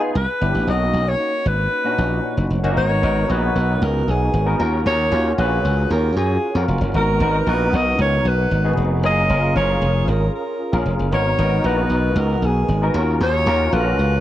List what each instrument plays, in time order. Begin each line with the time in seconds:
Already playing: tine electric piano B3 D#4 F4 G#4
0.15 slap bass C2, alto saxophone B4
0.41 slap bass G1, tine electric piano B3 D4 E4 G4
0.54 slap bass A1
0.67 slap bass B1, tine electric piano A#3 C#4 D#4 F#4, alto saxophone D#5
0.93 slap bass B1
1.08 alto saxophone C#5
1.46 slap bass G#1, alto saxophone B4
1.84 tine electric piano A#2 C#4 D4 F#4
1.91 tine electric piano D#4
1.98 slap bass A#1
2.37 slap bass F#1
2.50 slap bass F1
2.63 slap bass F#1, tine electric piano A#3 C#4 D#4 F#4
2.76 slap bass G#1, tine electric piano B3 D#4 F#4 A#4, alto saxophone C#5
3.02 slap bass G#1, tine electric piano B3 D#4 F#4 A#4
3.28 slap bass A#1, tine electric piano B3 D#4 F#4 C#5, alto saxophone B4
3.56 slap bass B1
3.82 slap bass C#2, alto saxophone A#4
4.08 slap bass B1, alto saxophone G#4
4.33 slap bass G#1
4.46 tine electric piano B3 D#4 F#4 A#4
4.59 slap bass D#2, tine electric piano C#4 F4 F#4 A#4
4.86 slap bass D#2, alto saxophone C#5
5.11 slap bass D#2, tine electric piano C#4 F4 F#4 C#5
5.37 slap bass A#1, tine electric piano C#4 F4 F#4 G#4, alto saxophone B4
5.65 slap bass C#2
5.90 slap bass D#2, alto saxophone A#4
6.16 slap bass F#2, alto saxophone G#4
6.55 slap bass F2, tine electric piano C#4 F4 F#4 A#4
6.68 slap bass F1
6.81 slap bass F#1
6.94 slap bass G#1, tine electric piano B3 D#4 F#4 A#4, alto saxophone A#4
7.20 slap bass G#1, tine electric piano B3 D#4 F#4 A#4
7.46 slap bass A#1, tine electric piano B3 D#4 F#4 A#4, alto saxophone B4
7.73 slap bass B1, alto saxophone D#5
7.99 slap bass C#2, alto saxophone C#5
8.25 slap bass B1, alto saxophone B4
8.51 slap bass G#1
8.64 tine electric piano B3 D#4 F#4 G#4
8.77 slap bass F1
9.03 slap bass F#1, tine electric piano C#4 F4 G#4 A#4, alto saxophone D#5
9.29 slap bass F#1, tine electric piano C#4 F4 G#4 A#4
9.55 slap bass F#1, tine electric piano C#4 F4 G#4 A#4, alto saxophone C#5
9.81 slap bass F1
10.08 slap bass G#1, alto saxophone A#4
10.35 alto saxophone A#4
10.72 slap bass A#1, tine electric piano C#4 F4 G#4 A#4
10.86 slap bass F1
10.99 slap bass F#1
11.12 slap bass G#1, tine electric piano B3 D#4 F#4 A#4, alto saxophone C#5
11.38 slap bass G#1, tine electric piano B3 D#4 F#4 A#4
11.64 slap bass A#1, tine electric piano B3 D#4 F#4 A#5, alto saxophone B4
11.90 slap bass B1
12.16 slap bass C#2, alto saxophone A#4
12.42 slap bass B1, alto saxophone G#4
12.68 slap bass G#1
12.82 tine electric piano B3 D#4 F#4 A#4
12.94 slap bass D#2, tine electric piano C#4 F4 F#4 A#4
13.20 slap bass D#2, alto saxophone C#5
13.46 slap bass D#2, tine electric piano C#4 F4 F#4 A#4
13.72 slap bass A#1, tine electric piano C#4 F4 F#4 A4, alto saxophone B4
13.81 tine electric piano A#5
13.99 slap bass C#2